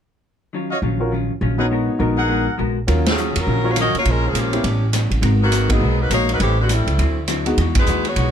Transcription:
0.53 hollow-body jazz guitar D#3 F#3 C#4 F4
0.71 trumpet section F#4 C#5 D#5 F5
0.82 upright bass A#1, hollow-body jazz guitar D#3 F#3 C#4 F4
1.00 grand piano C#4 F4 F#4 A#4
1.12 hollow-body jazz guitar D#3 F#3 C#4 F4
1.41 upright bass A#1, hollow-body jazz guitar D#3 F#3 C#4 F4
1.58 grand piano B3 D#4 F#4 C#5, trumpet section G#4 A#4 B4 F#5
1.71 hollow-body jazz guitar G#3 B3 F#4 A#4
1.99 upright bass A#1, hollow-body jazz guitar G#3 B3 F#4 A#4, grand piano B3 D#4 F#4 A#4
2.17 trumpet section G#4 A#4 F#5
2.29 hollow-body jazz guitar G#3 B3 F#4 A#4
2.58 upright bass A#1, hollow-body jazz guitar G#3 B3 F#4 A#4
2.87 upright bass D#2, hollow-body jazz guitar D#3 F#3 C#4 F4, grand piano C#4 F4 F#4 A#4, kick, ride
3.06 saxophone section F#3 C#4 F4 G#4, snare, ride
3.17 hollow-body jazz guitar D#3 F#3 C#4 F4, hi-hat pedal
3.36 upright bass E2, saxophone section F#3 C#4 F4 A#4, ride
3.47 upright bass A#1, hollow-body jazz guitar D#3 F#3 C#4 F4, kick
3.64 grand piano C#4 F4 F#4 C#5
3.69 saxophone section A#3 F4 F#4 C#5
3.76 hollow-body jazz guitar D#3 F#3 C#4 F4, saxophone section C#4, cross-stick, hi-hat pedal, ride
3.80 saxophone section F#4 A#4 D#5
3.94 muted upright bass stroke, ride
3.98 saxophone section A#3 F4 F#4 C#5
4.05 upright bass A#1, hollow-body jazz guitar A#2 F3 G#3 C#4, kick, ride
4.09 saxophone section G#3 C#4 F4 A#4
4.27 saxophone section F3 A#3 C#4 G#4
4.33 upright bass A#1, hollow-body jazz guitar A#2 F3 G#3 C#4, hi-hat pedal, ride
4.38 saxophone section F3 A#3 C#4 G4
4.52 grand piano B3 C#4 E4 G4, ride
4.63 upright bass A1, hollow-body jazz guitar A2 G3 B3 C#4, kick, ride
4.93 hollow-body jazz guitar A2 G3 B3 C#4, cross-stick, hi-hat pedal, ride
5.10 upright bass A1, ride
5.21 upright bass G#1, hollow-body jazz guitar G#3 B3 F#4 A#4, kick, ride
5.42 saxophone section D#3 A#3 B3 F#4
5.52 hollow-body jazz guitar G#3 B3 F#4 A#4, hi-hat pedal, ride
5.69 saxophone section F#3 B3 D#4 G#4, grand piano A#3 B3 D#4 F#4, kick, ride
5.81 upright bass B1, hollow-body jazz guitar G#3 B3 F#4 A#4
6.00 saxophone section F#3 A#3 D#4 B4
6.10 upright bass A#1, hollow-body jazz guitar G#3 B3 F#4 A#4, saxophone section A#3 D#4 F#4 C#5, cross-stick, hi-hat pedal, ride
6.29 saxophone section F#3 A#3 D#4 B4, ride
6.39 upright bass A1, hollow-body jazz guitar A2 G3 C4 E4, saxophone section E3 A3 C4 G4, kick, ride
6.61 saxophone section D3 G3 B3 F#4
6.69 hollow-body jazz guitar A2 G3 C4 E4, saxophone section C4 E4, hi-hat pedal, ride
6.73 saxophone section G3 A3
6.87 upright bass C#2, ride
6.98 upright bass D2, hollow-body jazz guitar D3 F#3 C4 E4, kick, ride
7.28 hollow-body jazz guitar D3 F#3 C4 E4, cross-stick, hi-hat pedal, ride
7.46 grand piano G#3 B3 D#4 F#4, ride
7.57 upright bass E2, hollow-body jazz guitar E3 G#3 D#4 F#4, kick, ride
7.75 kick, ride
7.79 saxophone section G#3 D#4 F#4 B4
7.86 upright bass D#2, hollow-body jazz guitar E3 G#3 D#4 F#4, hi-hat pedal
8.05 saxophone section B3 F#4 G#4 C#5, ride
8.16 upright bass B1, hollow-body jazz guitar E3 G#3 D#4 F#4, kick, ride

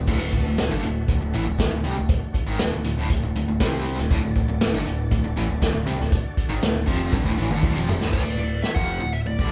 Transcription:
0.07 picked electric bass D1, overdriven electric guitar D2 A2, tonewheel organ A3 D4 F#4, kick, crash, shaker
0.20 picked electric bass D1, overdriven electric guitar D2 A2
0.32 picked electric bass D1, overdriven electric guitar D2 A2, kick, closed hi-hat, shaker
0.45 picked electric bass D1, overdriven electric guitar D2 A2, shaker
0.58 picked electric bass D1, overdriven electric guitar D2 A2, snare, closed hi-hat, shaker
0.70 picked electric bass G1, overdriven electric guitar G2 D3, shaker
0.83 picked electric bass D1, overdriven electric guitar D2 A2, closed hi-hat, shaker
1.08 picked electric bass D1, overdriven electric guitar D2 A2, kick, closed hi-hat, shaker
1.21 picked electric bass D1, overdriven electric guitar D2 A2, shaker
1.33 picked electric bass A1, overdriven electric guitar A2 E3, closed hi-hat, shaker
1.46 picked electric bass D1, overdriven electric guitar D2 A2
1.58 picked electric bass D1, overdriven electric guitar D2 A2, kick, snare, closed hi-hat, shaker
1.71 picked electric bass D1, overdriven electric guitar D2 A2
1.83 picked electric bass C2, overdriven electric guitar C3 G3, closed hi-hat, shaker
1.96 picked electric bass D1, overdriven electric guitar D2 A2, shaker
2.09 kick, closed hi-hat, shaker
2.34 kick, closed hi-hat, shaker
2.46 picked electric bass G#1, overdriven electric guitar G#2 D#3, shaker
2.59 picked electric bass D1, overdriven electric guitar D2 A2, snare, closed hi-hat, shaker
2.72 picked electric bass D1, overdriven electric guitar D2 A2
2.84 picked electric bass D1, overdriven electric guitar D2 A2, closed hi-hat, shaker
2.97 picked electric bass D1, overdriven electric guitar D2 A2
3.09 picked electric bass D1, overdriven electric guitar D2 A2, kick, closed hi-hat, shaker
3.21 picked electric bass D1, overdriven electric guitar D2 A2, shaker
3.33 picked electric bass D1, overdriven electric guitar D2 A2, closed hi-hat, shaker
3.47 picked electric bass D1, overdriven electric guitar D2 A2
3.59 picked electric bass C2, overdriven electric guitar C3 G3 C4, kick, snare, closed hi-hat, shaker
3.85 closed hi-hat, shaker
3.98 picked electric bass D1, overdriven electric guitar D2 A2, snare, shaker
4.10 picked electric bass D1, overdriven electric guitar D2 A2, tonewheel organ A3 D4 F#4 D5, kick, closed hi-hat, shaker
4.23 picked electric bass D1, overdriven electric guitar D2 A2
4.35 picked electric bass D1, overdriven electric guitar D2 A2, kick, closed hi-hat, shaker
4.48 picked electric bass D1, overdriven electric guitar D2 A2, shaker
4.61 picked electric bass D1, overdriven electric guitar D2 A2, snare, closed hi-hat, shaker
4.73 picked electric bass G1, overdriven electric guitar G2 D3, shaker
4.86 picked electric bass D1, overdriven electric guitar D2 A2, closed hi-hat, shaker
5.11 picked electric bass D1, overdriven electric guitar D2 A2, kick, closed hi-hat, shaker
5.24 picked electric bass D1, overdriven electric guitar D2 A2
5.36 picked electric bass A1, overdriven electric guitar A2 E3, closed hi-hat, shaker
5.48 picked electric bass D1, overdriven electric guitar D2 A2
5.61 picked electric bass D1, overdriven electric guitar D2 A2, kick, snare, closed hi-hat, shaker
5.73 picked electric bass D1, overdriven electric guitar D2 A2
5.85 picked electric bass C2, overdriven electric guitar C3 G3, closed hi-hat, shaker
5.98 picked electric bass D1, overdriven electric guitar D2 A2, snare, shaker
6.12 kick, closed hi-hat, shaker
6.37 kick, closed hi-hat, shaker
6.49 picked electric bass G#1, overdriven electric guitar G#2 D#3, shaker
6.61 picked electric bass D1, overdriven electric guitar D2 A2, snare, closed hi-hat, shaker
6.74 picked electric bass D1, overdriven electric guitar D2 A2, shaker
6.87 picked electric bass F1, overdriven electric guitar F2 C3 F3, kick, closed hi-hat, shaker
7.00 shaker
7.12 picked electric bass G1, overdriven electric guitar G2 D3, kick, high tom, shaker
7.25 picked electric bass D1, overdriven electric guitar D2 A2, kick
7.37 picked electric bass A1, overdriven electric guitar A2 E3, shaker
7.50 picked electric bass G1, overdriven electric guitar G2 D3, mid tom, shaker
7.63 picked electric bass D1, overdriven electric guitar D2 A2, kick, mid tom, shaker
7.75 picked electric bass F1, overdriven electric guitar F2 C3 F3, shaker
7.87 floor tom, shaker
8.00 picked electric bass D1, overdriven electric guitar D2 A2, snare, shaker
8.13 picked electric bass D1, overdriven electric guitar D2 A2, lead electric guitar D5, kick, crash
8.25 picked electric bass D1, overdriven electric guitar D2 A2
8.38 picked electric bass D1, overdriven electric guitar D2 A2
8.62 lead electric guitar E5, snare, closed hi-hat
8.75 picked electric bass F1, overdriven electric guitar F2 C3 F3, lead electric guitar F#5, kick
9.01 picked electric bass D1, overdriven electric guitar D2 A2
9.13 lead electric guitar E5, closed hi-hat
9.26 picked electric bass D1, overdriven electric guitar D2 A2, lead electric guitar D5
9.38 picked electric bass G1, overdriven electric guitar G2 D3, kick

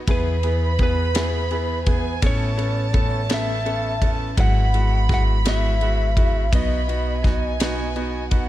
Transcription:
0.07 upright bass E2, steel-string acoustic guitar E3 B3 E4 G#4, grand piano B3 E4 G#4, violin section B5, kick, ride
0.11 lead electric guitar B4
0.43 grand piano B3 E4 G#4, ride
0.78 steel-string acoustic guitar E3 B3 E4 G#4, grand piano B3 E4 G#4, kick, ride
0.83 lead electric guitar B4
1.14 steel-string acoustic guitar E3 B3 E4 G#4, grand piano B3 E4 G#4, snare, ride
1.51 grand piano B3 E4 G#4, ride
1.86 grand piano B3 E4 G#4, steel-string acoustic guitar B3 E4 G#4, violin section G#5, kick, ride
2.22 upright bass A1, steel-string acoustic guitar A3 C#4 E4 B4, grand piano B3 C#4 A4, violin section A5, kick, ride
2.26 lead electric guitar C#5
2.57 grand piano B3 C#4 A4, ride
2.93 steel-string acoustic guitar A3 C#4 E4 B4, grand piano B3 C#4 A4, kick, ride
3.29 steel-string acoustic guitar A3 C#4 E4 B4, grand piano B3 C#4 A4, snare, ride
3.34 lead electric guitar E5
3.65 grand piano B3 C#4 A4, ride
4.01 grand piano B3 C#4 A4, steel-string acoustic guitar C#4 E4 B4, kick, ride
4.37 upright bass G#1, steel-string acoustic guitar G#2 E3 F#3 B3 E4 B4, grand piano G#3 E4 F#4, lead electric guitar F#5, violin section B5, kick, ride
4.74 grand piano G#3 E4 F#4, ride
5.08 steel-string acoustic guitar F#3 B3 E4 B4, grand piano G#3 E4 F#4, kick, snare, ride
5.14 lead electric guitar F#5
5.45 steel-string acoustic guitar G#2 E3 F#3 B3 E4 B4, grand piano G#3 E4 F#4, lead electric guitar E5, snare, ride
5.81 grand piano G#3 E4 F#4, ride
6.16 steel-string acoustic guitar F#3 B3 E4 B4, grand piano G#3 E4 F#4, kick, ride
6.51 upright bass B1, steel-string acoustic guitar B2 F#3 B3 D#4 B4, grand piano B3 D#4 F#4, violin section B5, kick, ride
6.55 lead electric guitar D#5
6.88 grand piano B3 D#4 F#4, ride
7.23 steel-string acoustic guitar F#3 B3 D#4 B4, grand piano B3 D#4 F#4, violin section G#5, kick, snare, ride
7.59 steel-string acoustic guitar B2 F#3 B3 D#4 B4, grand piano B3 D#4 F#4, snare, ride
7.96 grand piano B3 D#4 F#4, ride
8.31 grand piano B3 D#4 F#4, steel-string acoustic guitar B3 D#4 B4, violin section F#5, kick, ride

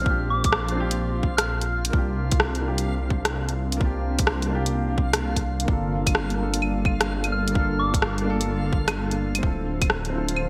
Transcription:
Already playing: detuned saw bass A#1, upright piano C4 D4 F4 G4, synth texture F4, synth bell F6
0.02 upright piano C4 D4
0.06 upright piano F4, kick
0.10 upright piano G4
0.30 synth bell D6
0.44 synth bell D6, kick, closed hi-hat
0.52 cross-stick
0.68 upright piano C4, closed hi-hat
0.75 upright piano D4 F4
0.80 upright piano G4
0.91 closed hi-hat
1.23 kick
1.37 synth bell F6, cross-stick, closed hi-hat
1.61 closed hi-hat
1.85 closed hi-hat
1.90 detuned saw bass C2, upright piano A#3 D4, kick
1.94 ambient pad C3, upright piano F4 G4
2.29 ambient pad C4, kick, closed hi-hat
2.40 ambient pad D4, cross-stick
2.55 closed hi-hat
2.59 upright piano A#3 D4, ambient pad A#3
2.65 upright piano F4 G4
2.72 ambient pad F5
2.78 closed hi-hat
3.10 kick
3.25 cross-stick, closed hi-hat
3.49 closed hi-hat
3.72 closed hi-hat
3.77 upright piano A#3 D4, kick
3.82 upright piano F4 G4
4.19 kick, closed hi-hat
4.27 cross-stick
4.42 closed hi-hat
4.47 upright piano A#3 D4
4.52 upright piano F4 G4
4.66 closed hi-hat
4.98 kick
5.13 cross-stick, closed hi-hat
5.36 kick, closed hi-hat
5.60 closed hi-hat
5.65 detuned saw bass G1, upright piano A#3 D4, kick
5.69 ambient pad G3, upright piano F4 A4
6.07 kick, closed hi-hat, claves
6.15 ambient pad A4, cross-stick
6.30 closed hi-hat
6.35 upright piano A#3 D4
6.40 upright piano F4 A4
6.54 closed hi-hat
6.62 claves
6.85 kick, claves
7.01 cross-stick, closed hi-hat
7.24 closed hi-hat, claves
7.32 synth bell F6
7.48 closed hi-hat
7.52 upright piano A#3 D4, kick
7.57 upright piano F4 A4
7.79 synth bell D6
7.94 kick, closed hi-hat
8.02 cross-stick
8.18 closed hi-hat
8.22 upright piano A#3 D4
8.27 upright piano F4 A4
8.41 closed hi-hat
8.73 kick
8.88 cross-stick, closed hi-hat, claves
9.11 closed hi-hat
9.35 upright piano C4, closed hi-hat, claves
9.41 detuned saw bass D1, ambient pad D3, upright piano E4 F4, kick
9.47 upright piano A4
9.60 ambient pad F3
9.74 ambient pad C5
9.82 kick, closed hi-hat, claves
9.90 cross-stick
10.05 closed hi-hat
10.10 upright piano C4 E4
10.15 upright piano F4 A4
10.28 closed hi-hat
10.34 ambient pad E5, claves

